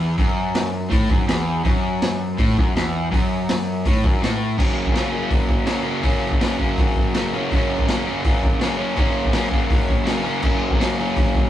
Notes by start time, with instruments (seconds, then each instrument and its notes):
Already playing: overdriven electric guitar E2
0.18 overdriven electric guitar F#2, kick, open hi-hat
0.55 snare, open hi-hat
0.90 overdriven electric guitar A2, kick, open hi-hat
1.09 overdriven electric guitar F#2, kick
1.28 overdriven electric guitar E2, snare, open hi-hat
1.64 overdriven electric guitar F#2, kick, open hi-hat
2.02 snare, open hi-hat
2.38 overdriven electric guitar A2, kick, open hi-hat
2.57 overdriven electric guitar F#2, kick
2.76 overdriven electric guitar E2, snare, open hi-hat
3.11 overdriven electric guitar F#2, kick, open hi-hat
3.49 snare, open hi-hat
3.85 overdriven electric guitar A2, kick, open hi-hat
4.04 overdriven electric guitar F#2, kick
4.22 overdriven electric guitar A2, snare, open hi-hat
4.58 overdriven electric guitar F#2 C#3 F#3 A#3 C#4, kick, crash
4.86 kick
4.93 overdriven electric guitar F#2 C#3 F#3 A#3 C#4, snare, open hi-hat
5.09 overdriven electric guitar A#3 C#4
5.14 overdriven electric guitar F#3
5.31 kick, open hi-hat
5.49 kick
5.65 overdriven electric guitar C#3 F#3 A#3, snare, open hi-hat
5.69 overdriven electric guitar C#4
5.83 overdriven electric guitar A#3 C#4
5.88 overdriven electric guitar F#3
6.01 overdriven electric guitar F#2 C#3 F#3, kick, open hi-hat
6.05 overdriven electric guitar A#3 C#4
6.31 kick
6.39 overdriven electric guitar F#2 C#3 F#3 A#3 C#4, snare, open hi-hat
6.58 overdriven electric guitar A#3 C#4, kick
6.63 overdriven electric guitar F#3
6.77 kick, open hi-hat
6.96 kick
7.13 overdriven electric guitar C#3 F#3 A#3 C#4, snare, open hi-hat
7.33 overdriven electric guitar F#3 A#3 C#4
7.51 overdriven electric guitar F#2 C#3 F#3 A#3, kick, open hi-hat
7.55 overdriven electric guitar C#4
7.79 kick
7.86 overdriven electric guitar F#2 C#3 F#3 A#3 C#4, snare, open hi-hat
8.06 overdriven electric guitar F#3 A#3 C#4
8.24 kick, open hi-hat
8.43 kick
8.59 overdriven electric guitar C#3 F#3 A#3 C#4, snare, open hi-hat
8.77 overdriven electric guitar F#3 A#3 C#4
8.95 overdriven electric guitar F#2 C#3 F#3 A#3, kick, open hi-hat
8.99 overdriven electric guitar C#4
9.25 kick
9.31 overdriven electric guitar F#2 C#3 F#3 A#3, snare, open hi-hat
9.36 overdriven electric guitar C#4
9.49 overdriven electric guitar F#3 A#3 C#4, kick
9.70 kick, open hi-hat
9.89 kick
10.03 overdriven electric guitar C#3 F#3 A#3, snare, open hi-hat
10.08 overdriven electric guitar C#4
10.23 overdriven electric guitar F#3 A#3 C#4
10.41 overdriven electric guitar F#2 C#3 F#3 A#3 C#4, kick, crash
10.71 kick
10.77 overdriven electric guitar F#2 C#3 F#3 A#3
10.81 overdriven electric guitar C#4, snare, open hi-hat
10.98 overdriven electric guitar F#3 A#3 C#4
11.16 kick, open hi-hat
11.35 kick